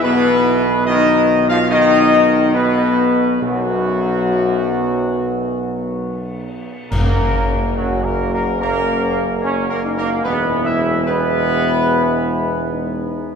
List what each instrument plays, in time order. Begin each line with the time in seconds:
0.03 tuba B1, trombone section B2, french horn section B3, trumpet section B4
0.86 trombone section D#3, french horn section D#4, trumpet section D#5
1.48 trombone section F3, french horn section F4, trumpet section F5
1.70 trombone section D#3, french horn section D#4, trumpet section D#5
2.54 trombone section B2, french horn section B3, trumpet section B4
3.42 tuba B1, trombone section F#2, french horn section F#3, trumpet section F#4
6.91 tuba F#1, timpani F#2, french horn section F#3 C#4, trombone section A#3, trumpet section A#4, concert bass drum, crash
7.77 trombone section F#3, french horn section F#3 C#4, trumpet section F#4
8.04 trombone section A#3, trumpet section A#4
8.32 trombone section A#3, trumpet section A#4
8.60 french horn section F#3 C#4, trombone section A#3, trumpet section A#4
9.42 french horn section F#3 C#4, trombone section C#4, trumpet section C#5
9.70 trombone section A#3, trumpet section A#4
9.85 french horn section D#4
9.97 trombone section A#3, trumpet section A#4
10.24 tuba E1, french horn section G#3 E4, trombone section B3, trumpet section B4
10.65 trombone section E4, trumpet section E5
11.07 french horn section G#3 E4, trombone section B3, trumpet section B4
12.71 french horn section D#4